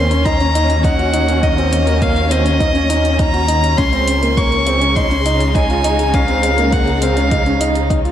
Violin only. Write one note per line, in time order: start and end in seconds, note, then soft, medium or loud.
0.00 0.27 C6 loud
0.25 0.85 A#5 loud
0.84 1.45 F#5 loud
1.43 2.03 D#5 loud
2.02 2.33 F5 loud
2.32 3.20 D#5 loud
3.19 3.79 A#5 loud
3.77 4.38 C6 loud
4.37 4.97 C#6 loud
4.95 5.56 C6 loud
5.54 6.16 G#5 loud
6.14 6.74 F5 loud
6.73 7.03 F#5 loud
7.02 7.90 F5 loud